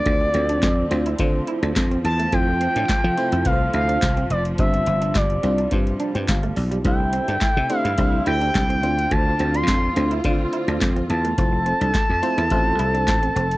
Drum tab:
HH |x-xxx-xxx-xxxxxx|x-xxx-xxx-xxxxxx|xxxxxxxxxxxxxxox|x-xxx-xxx-xxxxxx|
CP |----x-------x---|----x-------x---|----x-------x---|----x-------x---|
SD |----o-------o---|----o-------o---|----o-------o---|----o-------o---|
BD |o---o---o---o---|o---o---o---o---|o---o---o---o---|o---o---o---o---|

HH |x-xxx-xxx-xxxxxx|x-xxx-xxx-xxxxxx|
CP |----x-------x---|----x-------x---|
SD |----o-------o---|----o-------o---|
BD |o---o---o---o---|o---o---o---o---|